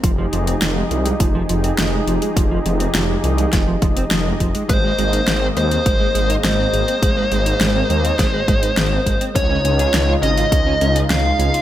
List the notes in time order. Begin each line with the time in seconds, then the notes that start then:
0.03 F1 F3 D#4 G4 G#4 D#5, kick, closed hi-hat
0.18 F3
0.33 F1 F3, closed hi-hat
0.47 C4, closed hi-hat
0.62 F1 F3, snare, closed hi-hat
0.76 G#3
0.91 C2 F3, closed hi-hat
1.06 G#3, closed hi-hat
1.20 F1 F3, kick, closed hi-hat
1.35 F3
1.49 F1 F3, closed hi-hat
1.64 C4, closed hi-hat
1.78 F1 F3, snare, closed hi-hat
1.93 G#3
2.07 F1 F3, closed hi-hat
2.22 G#3, closed hi-hat
2.37 F1 F3, kick, closed hi-hat
2.51 F3
2.66 F1 F3, closed hi-hat
2.80 C4, closed hi-hat
2.95 F1 F3, snare, closed hi-hat
3.09 G#3
3.24 C2 F3, closed hi-hat
3.38 G#3, closed hi-hat
3.53 F1 F3, kick, snare, closed hi-hat
3.67 F3
3.82 F1 F3, kick, closed hi-hat
3.96 C4, closed hi-hat
4.11 F1 F3, snare, closed hi-hat
4.26 G#3
4.40 F1 F3, kick, closed hi-hat
4.55 G#3, closed hi-hat
4.69 G#1 G#3 A#3 C5, kick, closed hi-hat
4.84 G#3
4.98 G#1 G#3, closed hi-hat
5.13 D#4, closed hi-hat
5.27 G#1 G#3, snare, closed hi-hat
5.42 C4
5.57 D#2 G#3 C5, closed hi-hat
5.71 C4, closed hi-hat
5.86 G#1 G#3, kick, closed hi-hat
6.00 G#3
6.14 G#1 G#3, closed hi-hat
6.29 D#4, closed hi-hat
6.44 G#1 G#3 C5, snare, closed hi-hat
6.59 C4
6.73 G#1 G#3, closed hi-hat
6.88 C4, closed hi-hat
7.02 G#1 G#3, kick, closed hi-hat
7.17 G#3
7.32 G#1 G#3, closed hi-hat
7.46 D#4, closed hi-hat
7.61 G#1 G#3, snare, closed hi-hat
7.75 C4
7.90 D#2 G#3, closed hi-hat
8.04 C4, closed hi-hat
8.19 G#1 G#3, kick, snare, closed hi-hat
8.34 G#3
8.48 G#1 G#3, kick, closed hi-hat
8.63 D#4, closed hi-hat
8.77 G#1 G#3, snare, closed hi-hat
8.92 C4
9.06 G#1 G#3, kick, closed hi-hat
9.21 C4, closed hi-hat
9.35 C#2 C#3 C#4 D#4 F4 C#5, kick, closed hi-hat
9.50 C#4
9.65 C#2 C#4, closed hi-hat
9.79 G#4, closed hi-hat
9.94 C#2 C#4, snare, closed hi-hat
10.09 F4
10.23 G#1 C#4 D#5, closed hi-hat
10.38 F4, closed hi-hat
10.52 C#2 C#4, kick, closed hi-hat
10.67 C#4
10.81 C#2 C#4, closed hi-hat
10.96 G#4, closed hi-hat
11.10 C#2 C#4 F5, snare, closed hi-hat
11.25 F4
11.39 C#2 C#4, closed hi-hat
11.54 F4, closed hi-hat